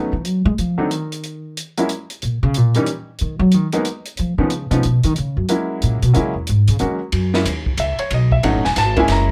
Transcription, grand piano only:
0.00 0.11 F#3 medium
0.00 0.11 A3 medium
0.00 0.11 B3 medium
0.00 0.11 C#4 soft
0.00 0.11 D#4 medium
0.78 0.89 F#3 medium
0.78 0.89 A3 medium
0.78 0.89 C4 medium
0.78 0.89 D4 medium
0.78 0.89 D#4 medium
1.78 1.88 F#3 medium
1.78 1.88 G#3 medium
1.78 1.88 A#3 medium
1.78 1.88 C#4 medium
1.78 1.89 E4 medium
2.75 2.86 E3 medium
2.75 2.86 G3 medium
2.75 2.86 A#3 medium
2.75 2.86 C#4 medium
2.75 2.86 D#4 medium
3.73 3.84 F#3 medium
3.73 3.84 G#3 medium
3.73 3.84 A#3 medium
3.73 3.84 B3 medium
3.73 3.84 D#4 medium
4.38 4.49 F3 medium
4.38 4.49 G#3 medium
4.38 4.50 B3 medium
4.38 4.50 C#4 medium
4.38 4.50 D#4 medium
4.71 4.82 F3 medium
4.71 4.82 G#3 medium
4.71 4.82 B3 medium
4.71 4.82 C#4 medium
4.71 4.82 D#4 medium
5.49 5.98 F#3 medium
5.49 5.98 G#3 medium
5.49 5.98 A#3 medium
5.49 5.98 C#4 medium
5.49 5.99 E4 medium
6.13 6.32 F#3 medium
6.13 6.33 G#3 medium
6.13 6.33 A#3 medium
6.13 6.33 C#4 medium
6.13 6.33 E4 medium
6.80 6.98 F#3 medium
6.80 6.98 G#3 medium
6.80 6.99 A#3 medium
6.80 6.98 C#4 medium
6.80 6.99 F#4 medium
7.34 7.44 G#3 medium
7.34 7.44 A#3 medium
7.34 7.44 C#4 medium
7.34 7.45 E4 medium
7.80 7.99 E5 medium
7.99 8.10 C#5 medium
8.14 8.32 D#5 medium
8.32 8.43 E5 medium
8.44 8.62 F#3 medium
8.44 8.62 A3 medium
8.44 8.62 C#4 medium
8.44 8.62 D#4 medium
8.44 8.64 F#5 medium
8.65 8.76 G#5 medium
8.78 8.97 A5 medium
8.97 9.31 G#3 medium
8.97 9.31 A#3 medium
8.97 9.31 C#4 medium
8.97 9.31 E4 medium
8.97 9.10 G#5 medium
9.12 9.30 A#5 medium

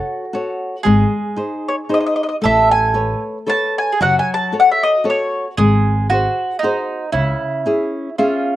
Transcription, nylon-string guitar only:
0.00 0.23 F#4 soft
0.00 0.24 A4 soft
0.00 0.24 C#5 soft
0.33 0.75 F#4 medium
0.33 0.75 A4 soft
0.33 0.76 C#5 medium
0.85 1.36 G#3 medium
1.36 1.79 D#4 soft
1.36 1.79 G#4 soft
1.36 1.80 C5 soft
1.89 2.32 D#4 soft
1.89 2.32 G#4 soft
1.89 2.33 C5 soft
2.42 2.93 A3 medium
2.94 3.37 A4 soft
2.94 3.37 B4 soft
2.94 3.37 C#5 soft
3.46 3.90 A4 soft
3.46 3.90 B4 soft
3.46 3.90 C#5 medium
4.01 4.52 F#3 medium
4.52 4.95 F#4 soft
4.52 4.95 A4 soft
4.52 4.95 C#5 soft
5.04 5.46 F#4 soft
5.04 5.47 A4 soft
5.04 5.47 C#5 medium
5.58 6.09 G#3 medium
6.10 6.52 F#4 soft
6.10 6.52 G#4 soft
6.10 6.53 C5 soft
6.63 7.04 F#4 soft
6.63 7.05 G#4 soft
6.63 7.05 C5 medium
7.12 7.64 C#3 medium
7.66 8.08 C#4 soft
7.66 8.09 E4 soft
7.66 8.09 G#4 soft
8.19 8.56 C#4 soft
8.19 8.56 G#4 soft
8.19 8.56 E5 soft

